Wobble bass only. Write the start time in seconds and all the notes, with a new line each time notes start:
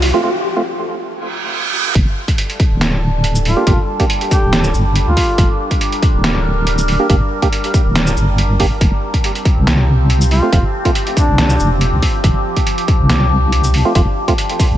Already playing: C2
1.95 G1
2.71 D1
3.67 G1
4.43 D1
4.74 G1
5.07 D2
5.38 G1
6.14 D1
7.10 G1
7.85 D1
8.17 G1
8.60 G1
8.81 F1
9.57 C2
10.53 F1
11.28 C2
11.60 F1
11.93 C2
12.24 F1
13.00 C2
13.95 F1
14.71 C2